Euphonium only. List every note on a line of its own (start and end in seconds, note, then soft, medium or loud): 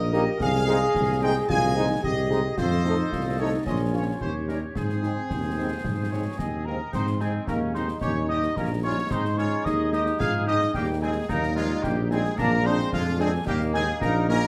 0.13 0.38 G4 medium
0.40 0.65 G#4 loud
0.67 1.51 G#4 loud
1.49 1.77 F4 loud
1.76 2.02 D#4 medium
2.02 2.59 G4 loud
2.58 2.84 F4 medium
2.85 3.13 D#4 medium
3.12 3.41 F4 medium
3.39 3.65 D#4 medium
3.66 4.43 C#4 medium
4.75 6.35 C4 medium
6.39 6.51 G#3 medium
6.66 6.78 A#3 medium
6.93 7.18 C4 medium
7.20 7.33 G#3 medium
7.49 7.73 A#3 medium
7.76 7.88 C4 medium
8.02 8.27 C#4 medium
8.30 8.55 D#4 medium
8.57 8.70 A#3 medium
8.84 8.96 C#4 medium
9.11 9.23 C4 medium
9.38 9.68 C#4 medium
9.66 9.92 D#4 medium
9.93 10.22 D#4 medium
10.20 10.47 F4 medium
10.48 10.73 D#4 medium
10.74 11.04 G3 medium
11.02 11.29 G#3 medium
11.30 11.55 A#3 medium
11.57 11.69 F3 medium
11.85 11.97 G3 medium
12.12 12.37 G#3 medium
12.39 12.68 A#3 loud
12.66 12.92 C4 loud
12.93 13.18 F3 medium
13.19 13.32 G#3 medium
13.47 13.59 G3 medium
13.75 13.87 G#3 medium
14.02 14.27 A#3 loud
14.30 14.42 A#3 loud